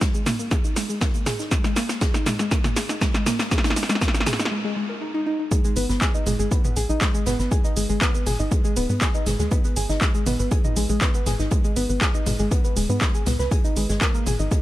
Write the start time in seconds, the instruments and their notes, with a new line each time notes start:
0.01 synth arpeggio sound G#3, kick, snare, closed hi-hat, shaker
0.14 synth arpeggio sound G#3, shaker
0.26 synth arpeggio sound A#3, snare, closed hi-hat, open hi-hat, mid tom, shaker
0.39 synth arpeggio sound A#3, shaker
0.51 synth arpeggio sound G#4, kick, snare, closed hi-hat, shaker
0.64 synth arpeggio sound D#4, closed hi-hat, shaker
0.76 synth arpeggio sound G#3, snare, open hi-hat, shaker
0.89 synth arpeggio sound G#3, shaker
1.01 synth arpeggio sound A#3, kick, snare, closed hi-hat, shaker
1.14 synth arpeggio sound A#3, closed hi-hat, shaker
1.26 synth arpeggio sound G#4, snare, closed hi-hat, open hi-hat, mid tom, shaker
1.39 synth arpeggio sound D#4, snare, shaker
1.51 synth arpeggio sound G#3, kick, snare, closed hi-hat, shaker
1.64 synth arpeggio sound G#3, snare, closed hi-hat, shaker
1.76 synth arpeggio sound A#3, snare, closed hi-hat, open hi-hat, shaker
1.89 synth arpeggio sound A#3, snare, shaker
2.01 synth arpeggio sound G#4, kick, snare, closed hi-hat, shaker
2.14 synth arpeggio sound D#4, snare, shaker
2.26 synth arpeggio sound G#3, snare, closed hi-hat, open hi-hat, mid tom, shaker
2.39 synth arpeggio sound G#3, snare, shaker
2.51 synth arpeggio sound A#3, kick, snare, closed hi-hat, shaker
2.64 synth arpeggio sound A#3, snare, mid tom, shaker
2.76 synth arpeggio sound G#4, snare, closed hi-hat, open hi-hat, shaker
2.89 synth arpeggio sound D#4, snare, shaker
3.01 synth arpeggio sound G#3, kick, snare, closed hi-hat, shaker
3.14 synth arpeggio sound G#3, snare, shaker
3.26 synth arpeggio sound A#3, snare, closed hi-hat, open hi-hat, mid tom, shaker
3.39 synth arpeggio sound A#3, snare, closed hi-hat, shaker
3.51 synth arpeggio sound G#4, kick, snare, closed hi-hat, shaker
3.58 snare
3.64 synth arpeggio sound D#4, snare, closed hi-hat, shaker
3.70 snare
3.76 synth arpeggio sound G#3, snare, closed hi-hat, open hi-hat, shaker
3.83 snare
3.89 synth arpeggio sound G#3, snare, shaker
3.95 snare
4.01 synth arpeggio sound A#3, kick, snare, closed hi-hat, shaker
4.08 snare
4.14 synth arpeggio sound A#3, snare, shaker
4.20 snare
4.26 synth arpeggio sound G#4, snare, closed hi-hat, open hi-hat, mid tom, shaker
4.33 snare
4.39 synth arpeggio sound D#4, snare, shaker
4.45 snare
4.51 synth arpeggio sound G#3
4.64 synth arpeggio sound G#3
4.76 synth arpeggio sound G#3
4.89 synth arpeggio sound A#4
5.01 synth arpeggio sound D#4
5.14 synth arpeggio sound D#4
5.26 synth arpeggio sound D#4
5.39 synth arpeggio sound D#4
5.51 synth arpeggio sound G#3 G#4, kick, closed hi-hat, shaker
5.64 synth arpeggio sound G#3 G#4, closed hi-hat, shaker
5.76 analog synth bass G#1, synth arpeggio sound B3 B4, closed hi-hat, open hi-hat, shaker
5.89 analog synth bass G#1, synth arpeggio sound B3 B4, snare, shaker
6.01 synth arpeggio sound G#4 G#5, kick, snare, clap, closed hi-hat, shaker
6.14 synth arpeggio sound D#4 D#5, shaker
6.26 analog synth bass G#1, synth arpeggio sound G#3 G#4, closed hi-hat, open hi-hat, mid tom, shaker
6.39 analog synth bass G#1, synth arpeggio sound G#3 G#4, shaker
6.51 synth arpeggio sound B3 B4, kick, closed hi-hat, shaker
6.64 synth arpeggio sound B3 B4, mid tom, shaker
6.76 analog synth bass A#1, synth arpeggio sound G#4 G#5, closed hi-hat, open hi-hat, shaker
6.89 analog synth bass A#1, synth arpeggio sound D#4 D#5, shaker
7.01 synth arpeggio sound G#3 G#4, kick, snare, clap, closed hi-hat, shaker
7.14 synth arpeggio sound G#3 G#4, shaker
7.26 analog synth bass G#1, synth arpeggio sound B3 B4, snare, closed hi-hat, open hi-hat, mid tom, shaker
7.39 analog synth bass G#1, synth arpeggio sound B3 B4, snare, shaker
7.51 synth arpeggio sound G#4 G#5, kick, closed hi-hat, shaker
7.64 synth arpeggio sound D#4 D#5, closed hi-hat, shaker
7.76 analog synth bass G#1, synth arpeggio sound G#3 G#4, closed hi-hat, open hi-hat, shaker
7.89 analog synth bass G#1, synth arpeggio sound G#3 G#4, shaker
8.01 synth arpeggio sound B3 B4, kick, snare, clap, closed hi-hat, shaker
8.14 synth arpeggio sound B3 B4, shaker
8.26 analog synth bass G#1, synth arpeggio sound G#4 G#5, closed hi-hat, open hi-hat, mid tom, shaker
8.39 analog synth bass G#1, synth arpeggio sound D#4 D#5, shaker
8.51 synth arpeggio sound G#3 G#4, kick, closed hi-hat, shaker
8.64 synth arpeggio sound G#3 G#4, closed hi-hat, shaker
8.76 analog synth bass D#1, synth arpeggio sound B3 B4, open hi-hat, shaker
8.90 analog synth bass G#2, synth arpeggio sound B3 B4, shaker
9.01 synth arpeggio sound G#4 G#5, kick, snare, clap, closed hi-hat, shaker
9.14 synth arpeggio sound D#4 D#5, closed hi-hat, shaker
9.26 analog synth bass G#1, synth arpeggio sound G#3 G#4, snare, closed hi-hat, open hi-hat, mid tom, shaker
9.39 analog synth bass D#2, synth arpeggio sound G#3 G#4, snare, shaker
9.51 synth arpeggio sound B3 B4, kick, closed hi-hat, shaker
9.64 synth arpeggio sound B3 B4, closed hi-hat, shaker
9.76 analog synth bass G#1, synth arpeggio sound G#4 G#5, closed hi-hat, open hi-hat, shaker
9.89 analog synth bass G#1, synth arpeggio sound D#4 D#5, snare, shaker
10.01 synth arpeggio sound G#3 G#4, kick, snare, clap, closed hi-hat, shaker
10.14 synth arpeggio sound G#3 G#4, shaker
10.26 analog synth bass G#1, synth arpeggio sound B3 B4, closed hi-hat, open hi-hat, mid tom, shaker
10.39 analog synth bass G#1, synth arpeggio sound B3 B4, shaker
10.51 synth arpeggio sound G#4 G#5, kick, closed hi-hat, shaker
10.64 synth arpeggio sound D#4 D#5, mid tom, shaker
10.76 analog synth bass A#1, synth arpeggio sound G#3 G#4, closed hi-hat, open hi-hat, shaker
10.89 analog synth bass A#1, synth arpeggio sound G#3 G#4, shaker
11.01 synth arpeggio sound B3 B4, kick, snare, clap, closed hi-hat, shaker
11.14 synth arpeggio sound B3 B4, shaker
11.26 analog synth bass G#1, synth arpeggio sound G#4 G#5, snare, closed hi-hat, open hi-hat, mid tom, shaker
11.39 analog synth bass G#1, synth arpeggio sound D#4 D#5, snare, shaker
11.51 synth arpeggio sound G#3 G#4, kick, closed hi-hat, shaker
11.64 synth arpeggio sound G#3 G#4, closed hi-hat, shaker
11.76 analog synth bass G#1, synth arpeggio sound B3 B4, closed hi-hat, open hi-hat, shaker
11.89 analog synth bass G#1, synth arpeggio sound B3 B4, shaker
12.01 synth arpeggio sound G#4 G#5, kick, snare, clap, closed hi-hat, shaker
12.14 synth arpeggio sound D#4 D#5, shaker
12.26 analog synth bass G#1, synth arpeggio sound G#3 G#4, closed hi-hat, open hi-hat, mid tom, shaker
12.39 analog synth bass G#1, synth arpeggio sound G#3 G#4, shaker
12.51 synth arpeggio sound B3 B4, kick, closed hi-hat, shaker
12.64 synth arpeggio sound B3 B4, closed hi-hat, shaker
12.76 analog synth bass D#1, synth arpeggio sound G#3 G#4, open hi-hat, shaker
12.89 analog synth bass G#2, synth arpeggio sound B3 B4, shaker
13.01 synth arpeggio sound G#3 G#4, kick, snare, clap, closed hi-hat, shaker
13.14 synth arpeggio sound G#4 G#5, closed hi-hat, shaker
13.26 analog synth bass C#2, synth arpeggio sound B3 B4, snare, closed hi-hat, open hi-hat, mid tom, shaker
13.39 analog synth bass C#2, synth arpeggio sound B4 B5, snare, shaker
13.51 synth arpeggio sound G#4 G#5, kick, closed hi-hat, shaker
13.64 synth arpeggio sound D#4 D#5, closed hi-hat, shaker
13.76 analog synth bass G#1, synth arpeggio sound G#3 G#4, closed hi-hat, open hi-hat, shaker
13.89 analog synth bass G#1, synth arpeggio sound G#3 G#4, snare, shaker
14.01 synth arpeggio sound A#3 A#4, kick, snare, clap, closed hi-hat, shaker
14.14 synth arpeggio sound A#3 A#4, shaker
14.26 analog synth bass G#1, synth arpeggio sound G#4 G#5, closed hi-hat, open hi-hat, mid tom, shaker
14.39 analog synth bass G#1, synth arpeggio sound D#4 D#5, shaker
14.51 synth arpeggio sound G#3 G#4, kick, closed hi-hat, shaker